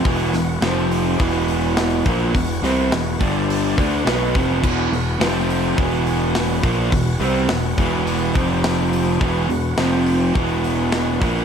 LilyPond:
<<
  \new Staff \with { instrumentName = "Tonewheel organ" } { \time 4/4 \key e \minor \tempo 4 = 105 <e b fis'>4 <f c' g'>4 <e b fis'>2~ | <e b fis'>4. <g d' a'>4 <e b fis'>4.~ | <e b fis'>4 <f c' g'>4 <e b fis'>2~ | <e b fis'>2~ <e b fis'>8 <f c' g'>4. |
<e b fis'>4 <f c' g'>4 <e b fis'>2 | }
  \new Staff \with { instrumentName = "Overdriven electric guitar" } { \clef bass \time 4/4 \key e \minor <e, b, e>8 <e, b,>8 <f, c f>4 <e, b, e>4. <ais, f ais>8 | <e, b,>8 <c g c'>8 <e, b,>8 <g, d g>4 <d a d'>8 <b, fis b>8 <f, c f>8 | <e, b, e>8 <e, b,>8 <f, c f>4 <e, b, e>4. <ais, f ais>8 | <e, b,>8 <c g c'>8 <e, b,>8 <e, b, e>4 <f, c f>4. |
<e, b, e>8 <e, b,>8 <f, c f>4 <e, b, e>4. <ais, f ais>8 | }
  \new Staff \with { instrumentName = "Picked electric bass" } { \clef bass \time 4/4 \key e \minor e,,8 e,,8 f,,4 e,,4. ais,,8 | e,,8 c,8 e,,8 g,,4 d,8 b,,8 f,,8 | e,,8 e,,8 f,,4 e,,4. ais,,8 | e,,8 c,8 e,,8 e,,4 f,,4. |
e,,8 e,,8 f,,4 e,,4. ais,,8 | }
  \new DrumStaff \with { instrumentName = "Drums" } \drummode { \time 4/4 <hho bd>8 <hho sn>8 <hho sn>8 hho8 <hho bd>8 hho8 <hho sn>8 <hho bd>8 | <hho bd>8 <hho sn>8 <hho sn>8 <hho bd>8 hho8 <hho bd>8 <hho sn>8 <hho bd>8 | <cymc bd>8 hho8 <hho sn>8 hho8 <hho bd>8 hho8 <hho sn>8 <hho bd>8 | <hho bd>8 hho8 <hho sn>8 <hho bd>8 hho8 <hho bd>8 <hho sn>8 hho8 |
<hho bd>8 hho8 <hho sn>8 hho8 <hho bd>8 hho8 <hho sn>8 <hho bd>8 | }
>>